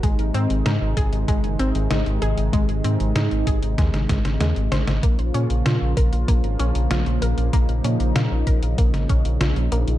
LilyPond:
<<
  \new Staff \with { instrumentName = "Synth arpeggio sound" } { \time 4/4 \key bes \minor \tempo 4 = 96 aes8 c'8 ees'8 aes'8 aes8 c'8 ees'8 aes'8 | aes8 c'8 ees'8 aes'8 aes8 aes8 aes8 c''8 | bes8 des'8 f'8 bes'8 bes8 des'8 f'8 bes'8 | bes8 des'8 f'8 bes'8 bes8 des'8 f'8 bes8 | }
  \new Staff \with { instrumentName = "Analog synth pad" } { \clef bass \time 4/4 \key bes \minor << { ees'1~ | ees'1 | f'1 | ees'1 | } \\ { <c ees aes>1~ | <c ees aes>1 | <des f bes>1~ | <des f bes>1 | } >> }
  \new Staff \with { instrumentName = "Analog synth bass" } { \clef bass \time 4/4 \key bes \minor aes,,16 aes,,16 aes,16 aes,,16 aes,16 aes,,16 aes,,16 aes,,16 aes,,16 ges,,16 aes,,16 aes,,16 aes,,16 aes,,16 aes,,16 aes,,16 | aes,,16 aes,,16 aes,16 aes,,16 aes,16 aes,,16 aes,,16 aes,,16 ees,16 aes,,16 aes,,16 aes,,16 ees,16 aes,,16 aes,,16 aes,,16 | bes,,16 bes,,16 bes,16 bes,,16 bes,16 bes,,16 bes,,16 bes,,16 bes,,16 aes,,16 bes,,16 bes,,16 bes,,16 bes,,16 bes,,16 bes,,16 | bes,,16 bes,,16 bes,16 bes,,16 bes,16 bes,,16 bes,,16 bes,,16 bes,,16 aes,,16 bes,,16 bes,,16 bes,,16 bes,,16 bes,,16 bes,,16 | }
  \new DrumStaff \with { instrumentName = "Drums" } \drummode { \time 4/4 <hh bd>16 hh16 hh16 hh16 <hh sn>8 <hh bd>16 hh16 <hh bd>16 hh16 hh16 hh16 <hh sn>16 hh16 hh16 hh16 | <hh bd>16 hh16 hh16 hh16 <hh sn>16 hh16 <hh bd>16 hh16 <hh bd sn>16 <hh sn>16 <hh bd sn>16 <hh sn>16 <hh sn>16 hh16 <hh sn>16 <hh sn>16 | <hh bd>16 hh16 hh16 hh16 <hh sn>8 <hh bd>16 hh16 <hh bd>16 hh16 hh16 hh16 <hh sn>16 hh16 hh16 hh16 | <hh bd>16 hh16 hh16 hh16 <hh sn>8 <hh bd>16 hh16 <hh bd>16 <hh sn>16 <hh bd>16 hh16 <hh sn>16 hh16 hh16 hh16 | }
>>